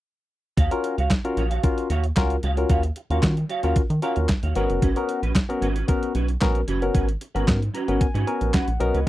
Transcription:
0.57 analog synth bass D#2, clean electric guitar F#4 C#5 F5, kick, closed hi-hat
0.71 tine electric piano C#4 F4 F#4 A#4, muted clean electric guitar stroke, closed hi-hat
0.84 muted clean electric guitar stroke, closed hi-hat
0.98 analog synth bass C#2, clean electric guitar F#4 C#5 F5, closed hi-hat
1.10 muted clean electric guitar stroke, kick, snare, clap, closed hi-hat
1.24 tine electric piano C#4 F4 F#4 A#4, muted clean electric guitar stroke, closed hi-hat
1.37 analog synth bass A#1, clean electric guitar F#4 C#5 F5, closed hi-hat
1.51 clean electric guitar F#4 C#5 F5, closed hi-hat
1.63 tine electric piano C#4 F4 F#4 A#4, muted clean electric guitar stroke, kick, closed hi-hat
1.78 muted clean electric guitar stroke, closed hi-hat
1.90 analog synth bass D#2, clean electric guitar F#4 C#5 F5, closed hi-hat
2.04 muted clean electric guitar stroke, closed hi-hat
2.16 analog synth bass C#2, tine electric piano C#4 F4 F#4 A#4, kick, snare, clap, closed hi-hat
2.30 muted clean electric guitar stroke, closed hi-hat
2.43 analog synth bass C#2, clean electric guitar F#4 C#5 F5, closed hi-hat
2.57 tine electric piano C#4 F4 F#4 A#4, muted clean electric guitar stroke, closed hi-hat
2.69 analog synth bass D#2, clean electric guitar F#4 C#5 F5, kick, closed hi-hat
2.83 muted clean electric guitar stroke, closed hi-hat
2.96 muted clean electric guitar stroke, closed hi-hat
3.10 analog synth bass D#2, tine electric piano C#4 F4 F#4 A#4, clean electric guitar F#4 C#5 F5, closed hi-hat
3.23 analog synth bass D#3, muted clean electric guitar stroke, kick, snare, clap, closed hi-hat
3.37 muted clean electric guitar stroke, closed hi-hat
3.49 clean electric guitar F#4 C#5 F5, closed hi-hat
3.63 analog synth bass D#2, tine electric piano C#4 F4 F#4 A#4, clean electric guitar F#4 C#5 F5, closed hi-hat
3.76 analog synth bass D#3, kick, closed hi-hat
3.90 analog synth bass D#3, muted clean electric guitar stroke, closed hi-hat
4.02 tine electric piano C#4 F4 F#4 A#4, clean electric guitar F#4 C#5 F5, closed hi-hat
4.16 analog synth bass D#2, muted clean electric guitar stroke, closed hi-hat
4.29 muted clean electric guitar stroke, kick, snare, clap, closed hi-hat
4.43 analog synth bass D#2, clean electric guitar F#4 C#5 F5, closed hi-hat
4.55 analog synth bass G#1, tine electric piano B3 C#4 F#4 A#4, clean electric guitar C#4 F#4 B4, closed hi-hat
4.70 analog synth bass F#1, muted clean electric guitar stroke, closed hi-hat
4.82 analog synth bass G#1, clean electric guitar C#4 F#4 B4, kick, closed hi-hat
4.96 tine electric piano B3 C#4 F#4 A#4, muted clean electric guitar stroke, closed hi-hat
5.09 muted clean electric guitar stroke, closed hi-hat
5.23 analog synth bass A#1, clean electric guitar C#4 F#4 B4, closed hi-hat
5.35 muted clean electric guitar stroke, kick, snare, clap, closed hi-hat
5.49 tine electric piano B3 C#4 F#4 A#4, muted clean electric guitar stroke, closed hi-hat
5.62 analog synth bass G#1, clean electric guitar C#4 F#4 B4, closed hi-hat
5.76 clean electric guitar C#4 F#4 B4, closed hi-hat
5.88 tine electric piano B3 C#4 F#4 A#4, muted clean electric guitar stroke, kick, closed hi-hat
6.03 muted clean electric guitar stroke, closed hi-hat
6.15 analog synth bass B1, clean electric guitar C#4 F#4 B4, closed hi-hat
6.28 muted clean electric guitar stroke, closed hi-hat
6.41 analog synth bass A#1, tine electric piano B3 C#4 F#4 A#4, kick, snare, clap, closed hi-hat
6.55 muted clean electric guitar stroke, closed hi-hat
6.68 analog synth bass F#1, clean electric guitar C#4 F#4 B4, closed hi-hat
6.82 tine electric piano B3 C#4 F#4 A#4, muted clean electric guitar stroke, closed hi-hat
6.94 analog synth bass G#1, clean electric guitar C#4 F#4 B4, kick, closed hi-hat
7.09 muted clean electric guitar stroke, closed hi-hat
7.21 muted clean electric guitar stroke, closed hi-hat
7.35 analog synth bass G#1, tine electric piano B3 C#4 F#4 A#4, clean electric guitar C#4 F#4 B4, closed hi-hat
7.48 analog synth bass G#2, kick, snare, clap, closed hi-hat
7.62 muted clean electric guitar stroke, closed hi-hat
7.74 clean electric guitar C#4 F#4 B4, tine electric piano A#5, closed hi-hat
7.88 analog synth bass G#1, tine electric piano B3 C#4 F#4 A#4, clean electric guitar C#4 F#4 B4, closed hi-hat
8.01 analog synth bass G#2, tine electric piano G#5, muted clean electric guitar stroke, kick, closed hi-hat
8.14 analog synth bass G#2, clean electric guitar C#4 F#4 B4, closed hi-hat
8.27 tine electric piano B3 C#4 F#4 A#4 G#5, muted clean electric guitar stroke, closed hi-hat
8.41 analog synth bass A#1, muted clean electric guitar stroke, closed hi-hat
8.53 clean electric guitar C#4 F#4 B4, tine electric piano F#5, kick, snare, clap, closed hi-hat
8.68 analog synth bass A#1, muted clean electric guitar stroke, closed hi-hat
8.80 analog synth bass B1, tine electric piano B3 C#4 F#4 A#4 D#5, muted clean electric guitar stroke, closed hi-hat
8.94 analog synth bass C#2, clean electric guitar C#4 F#4 B4, closed hi-hat

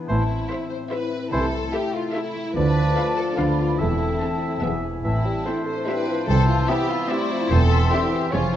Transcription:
Already playing: harp E3 E4 B4 E5 B5 E6
0.00 harp B3
0.08 double bass section A1, cello section A2, harp A2, bassoon E3, french horn section C4 E4, violin section E4, clarinet E4, oboe C5, flute section A5
0.30 harp C4
0.50 viola section E4 C5, violin section E5, harp E5
0.70 violin section C5, harp C5
0.91 viola section E4 C5, harp E4, violin section B4 E5
1.12 harp C4
1.32 double bass section C2, harp C3, cello section C3, bassoon E3, french horn section A3, clarinet E4, violin section A4, oboe C5, flute section A5
1.53 harp A3
1.74 viola section E4 A4, violin section G4 E5, harp E5
1.94 violin section F4, harp A4
2.14 violin section E4 E5, viola section E4 A4, harp E4
2.35 harp A3
2.56 double bass section D2, harp D3, cello section D3, bassoon F3, french horn section A3 F4, clarinet D4, violin section B4, oboe D5, flute section A5
2.76 harp A3
2.97 viola section D4 A4, harp D5, violin section F5
3.17 harp A4, violin section A4
3.37 double bass section D2, harp D3, cello section D3, bassoon F3, french horn section B3 F4, viola section D4 B4, clarinet D4, violin section F4 F5, oboe D5, flute section B5
3.58 harp F4 B4
3.78 double bass section E1, cello section E2, harp E3, bassoon A3, french horn section C4 A4, clarinet C4, violin section E4, oboe E5, flute section A5
4.00 harp E4
4.20 viola section C4 A4, harp C5, violin section A5
4.42 harp E5
4.62 double bass section E1, cello section E2, bassoon E3, harp E3, french horn section B3 G#4, clarinet B3, viola section B3 G#4, oboe E5, violin section E5, flute section G#5
4.83 harp E4 G#4
5.04 double bass section A1, harp A2, cello section A2, bassoon E3, clarinet C4, french horn section C4 E4, violin section E4, oboe E5, flute section A5
5.25 bassoon G3, harp C4
5.46 bassoon A3, viola section C4 E4, clarinet D4, harp A4, oboe C5, violin section E5, flute section E5
5.66 bassoon A3, harp C5, violin section C5
5.87 bassoon G3, viola section C4 E4, harp E4, violin section B4 E5, flute section G5
6.08 bassoon F3, harp C4
6.28 double bass section C2, harp C3, timpani C3, cello section C3, bassoon E3, clarinet C4, violin section A4, oboe C5, flute section A5
6.49 harp C4, violin section F4
6.69 bassoon E3, clarinet B3, viola section C4 E4, violin section G4 E5, harp A4, oboe E5, flute section B5
6.90 violin section F4, harp C5
7.09 bassoon G3, clarinet A3, viola section C4 E4, violin section E4 E5, harp E4, oboe D5, flute section C6
7.30 bassoon F3, harp C4
7.50 double bass section E1, harp E2, cello section E2, bassoon E3, french horn section C4 E4, clarinet C4, violin section A4, oboe C5
7.71 harp C4, oboe E5
7.91 bassoon D3, viola section C4 E4, violin section G4 E5, harp C5
8.12 bassoon E3, harp E4
8.32 double bass section F1, cello section F2, harp F2, bassoon F3, french horn section C#4 F4, clarinet C#4, viola section C#4 G#4, violin section F4 C#5, oboe C#5, flute section G#5

